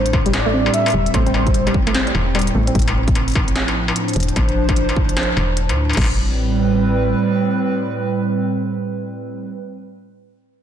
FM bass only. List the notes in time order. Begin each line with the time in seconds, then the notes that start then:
Already playing: A1
0.94 E1
1.14 A1
2.15 E1
2.55 A1
2.75 A1
4.16 E1
4.36 A1
5.37 E1
5.69 D2
5.97 A1